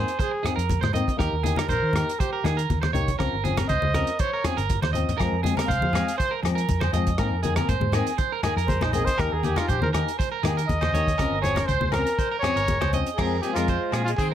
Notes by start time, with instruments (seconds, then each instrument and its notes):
Already playing: nylon-string guitar C4, clean electric guitar G#4, trumpet C5
0.08 closed hi-hat
0.19 trumpet G#4, clean electric guitar C5, kick, closed hi-hat
0.31 muted clean electric guitar stroke
0.43 nylon-string guitar D#3 A#3 C4, clean electric guitar G#4, cross-stick, closed hi-hat, low conga
0.56 fingered electric bass F2, clean electric guitar A#4, closed hi-hat
0.69 kick, closed hi-hat, high conga
0.81 fingered electric bass G#2, clean electric guitar C5, cross-stick, high conga
0.93 nylon-string guitar D#3 A#3 C4, clean electric guitar D#5, closed hi-hat, low conga
1.08 kick, closed hi-hat
1.17 fingered electric bass D#2, nylon-string guitar A#3 D#4 G4, clean electric guitar A#4, kick, cross-stick, closed hi-hat
1.32 fingered electric bass D#2
1.43 nylon-string guitar A#3 D#4 G4, clean electric guitar G#4, closed hi-hat, high conga
1.56 nylon-string guitar D#4 G4, clean electric guitar A#4, cross-stick, closed hi-hat, high conga
1.69 fingered electric bass A#1, trumpet A#4, clean electric guitar C5, kick, closed hi-hat, low conga
1.82 fingered electric bass D#3
1.93 nylon-string guitar A#3 D#4 G4, clean electric guitar A#4, cross-stick, closed hi-hat, low conga
2.09 closed hi-hat
2.19 trumpet G4, clean electric guitar C5, kick, closed hi-hat
2.33 clean electric guitar A#4
2.44 fingered electric bass D#3, nylon-string guitar A#3 D#4 G4, clean electric guitar G#4, cross-stick, closed hi-hat, low conga
2.57 clean electric guitar A#4, closed hi-hat
2.70 fingered electric bass D#2, kick, closed hi-hat, high conga
2.82 clean electric guitar C5, cross-stick, high conga
2.93 fingered electric bass C2, nylon-string guitar A#3 D#4 G4, clean electric guitar C#5, closed hi-hat, low conga
3.08 kick, closed hi-hat
3.19 fingered electric bass C#2, nylon-string guitar F3 C4 C#4, clean electric guitar A#4, kick, cross-stick, closed hi-hat
3.33 fingered electric bass G1
3.44 nylon-string guitar F3 C4 C#4, clean electric guitar G#4, closed hi-hat, high conga
3.57 nylon-string guitar C4 C#4, clean electric guitar A#4, cross-stick, closed hi-hat, high conga
3.69 fingered electric bass C#2, clean electric guitar C5, trumpet D#5, kick, closed hi-hat, low conga
3.82 fingered electric bass C#2, high conga
3.94 nylon-string guitar F3 C4 C#4, clean electric guitar A#4, cross-stick, closed hi-hat, low conga
4.07 closed hi-hat
4.19 clean electric guitar C5, trumpet C#5, kick, closed hi-hat
4.33 clean electric guitar A#4
4.44 nylon-string guitar F3 C4 C#4, clean electric guitar G#4, cross-stick, closed hi-hat, low conga
4.57 fingered electric bass G1, clean electric guitar A#4, closed hi-hat
4.70 kick, closed hi-hat, high conga
4.82 fingered electric bass D#2, clean electric guitar C5, cross-stick, high conga
4.93 nylon-string guitar F3 C4 C#4, clean electric guitar D#5, closed hi-hat, low conga
5.09 closed hi-hat, low conga
5.18 fingered electric bass F2, nylon-string guitar F3 G#3 C4, clean electric guitar A#4, kick, cross-stick, closed hi-hat, low agogo
5.32 fingered electric bass F2
5.43 nylon-string guitar F3 G#3 C4, clean electric guitar G#4, closed hi-hat, high conga
5.57 nylon-string guitar G#3 C4, clean electric guitar A#4, cross-stick, closed hi-hat, high conga, low agogo
5.68 fingered electric bass C2, clean electric guitar C5, trumpet F5, kick, closed hi-hat, low conga
5.81 fingered electric bass F3, high conga
5.93 nylon-string guitar F3 G#3 C4, clean electric guitar G#4, cross-stick, closed hi-hat, low conga, low agogo
6.08 closed hi-hat
6.18 trumpet C5, clean electric guitar C5, kick, closed hi-hat
6.31 clean electric guitar A#4
6.43 nylon-string guitar F3 G#3 C4, fingered electric bass F3, muted clean electric guitar stroke, cross-stick, closed hi-hat, low conga, low agogo
6.55 clean electric guitar A#4, closed hi-hat
6.69 fingered electric bass F2, kick, closed hi-hat, high conga
6.81 clean electric guitar C5, cross-stick, high conga, low agogo
6.93 fingered electric bass F2, nylon-string guitar F3 G#3 C4, clean electric guitar D#5, closed hi-hat, low conga
7.07 kick, closed hi-hat
7.18 fingered electric bass G#2, nylon-string guitar D#3 A#3 C4, clean electric guitar A#4, kick, cross-stick, closed hi-hat, low agogo
7.31 fingered electric bass F2
7.43 nylon-string guitar D#3 A#3, clean electric guitar G#4, closed hi-hat, high conga
7.56 nylon-string guitar A#3 C4, clean electric guitar A#4, cross-stick, closed hi-hat, high conga, low agogo
7.68 fingered electric bass G#2, clean electric guitar C5, kick, closed hi-hat, low conga
7.80 fingered electric bass G#2, high conga
7.92 nylon-string guitar D#3 A#3, clean electric guitar G#4, cross-stick, closed hi-hat, low conga, low agogo
7.96 nylon-string guitar C4
8.07 closed hi-hat
8.18 clean electric guitar C5, kick, closed hi-hat
8.32 clean electric guitar A#4
8.43 nylon-string guitar D#3 A#3, clean electric guitar G#4, muted nylon-string guitar stroke, cross-stick, closed hi-hat, low conga, low agogo
8.56 fingered electric bass F2, clean electric guitar A#4, closed hi-hat
8.68 trumpet C5, kick, closed hi-hat, high conga
8.81 fingered electric bass A#1, trumpet D#4, clean electric guitar C5, cross-stick, high conga, low agogo
8.93 nylon-string guitar D#3 A#3 C4, trumpet G#4, clean electric guitar D#5, closed hi-hat, low conga
9.05 trumpet C5, kick, closed hi-hat
9.18 fingered electric bass D#2, nylon-string guitar A#3 D#4 G4, clean electric guitar A#4, trumpet A#4, kick, cross-stick, closed hi-hat, low agogo
9.32 fingered electric bass D#2, trumpet G#4
9.43 nylon-string guitar A#3 D#4 G4, trumpet G4, clean electric guitar G#4, closed hi-hat, high conga
9.56 trumpet F4, nylon-string guitar G4, clean electric guitar A#4, cross-stick, closed hi-hat, high conga, low agogo
9.60 nylon-string guitar D#4
9.68 fingered electric bass A#1, trumpet G4, clean electric guitar C5, kick, closed hi-hat, low conga
9.82 fingered electric bass D#3, trumpet A#4, high conga
9.93 nylon-string guitar A#3 D#4 G4, clean electric guitar A#4, cross-stick, closed hi-hat, low conga, low agogo
10.08 closed hi-hat
10.19 clean electric guitar C5, kick, closed hi-hat
10.32 clean electric guitar A#4
10.43 fingered electric bass D#3, nylon-string guitar A#3 D#4 G4, clean electric guitar G#4, cross-stick, closed hi-hat, low conga, low agogo
10.57 clean electric guitar A#4, closed hi-hat
10.68 fingered electric bass D#2, trumpet D#5, kick, closed hi-hat, high conga
10.81 clean electric guitar C5, cross-stick, high conga, low agogo
10.92 fingered electric bass D#2, nylon-string guitar A#3 D#4 G4, clean electric guitar C#5, closed hi-hat, low conga
11.07 kick, closed hi-hat
11.18 fingered electric bass C#2, nylon-string guitar F3 C4 C#4, clean electric guitar A#4, kick, cross-stick, closed hi-hat, low agogo
11.30 fingered electric bass G1
11.42 nylon-string guitar F3 C4, clean electric guitar G#4, trumpet C#5, muted nylon-string guitar stroke, closed hi-hat, high conga
11.55 nylon-string guitar C#4, clean electric guitar A#4, cross-stick, closed hi-hat, high conga, low agogo
11.65 fingered electric bass C#2, trumpet C5, clean electric guitar C5, kick, closed hi-hat, low conga
11.81 fingered electric bass C#2, high conga
11.91 nylon-string guitar F3 C4 C#4, trumpet A#4, clean electric guitar A#4, cross-stick, closed hi-hat, low conga, low agogo
12.07 closed hi-hat
12.18 clean electric guitar C5, kick, closed hi-hat
12.31 clean electric guitar A#4
12.39 nylon-string guitar F3 C4, trumpet C#5, low conga, low agogo
12.44 nylon-string guitar C#4, clean electric guitar G#4, cross-stick, closed hi-hat
12.56 fingered electric bass G1, clean electric guitar A#4, closed hi-hat
12.68 kick, closed hi-hat, high conga
12.81 fingered electric bass C#2, clean electric guitar C5, cross-stick, high conga, low agogo
12.92 nylon-string guitar F3 C4 C#4, clean electric guitar D#5, closed hi-hat, low conga
13.07 closed hi-hat
13.15 tenor saxophone C4, trumpet G#4, clean electric guitar A#4, low agogo
13.19 fingered electric bass F2, nylon-string guitar F3 G#3 C4, kick, cross-stick, crash
13.40 nylon-string guitar F3 G#3, tenor saxophone A#3, trumpet G4, clean electric guitar G#4, closed hi-hat
13.44 nylon-string guitar C4
13.53 fingered electric bass F2, nylon-string guitar G#3 C4, trumpet F4, clean electric guitar A#4, cross-stick, closed hi-hat, low agogo
13.58 tenor saxophone G#3
13.68 clean electric guitar C5, kick, closed hi-hat
13.91 fingered electric bass A#2, nylon-string guitar F3 G#3 C4, clean electric guitar G#4, cross-stick, closed hi-hat, low agogo
14.04 trumpet F4, closed hi-hat
14.09 tenor saxophone G#3
14.17 fingered electric bass D#3, trumpet G#4, clean electric guitar C5, kick, closed hi-hat
14.21 tenor saxophone C4
14.30 nylon-string guitar C4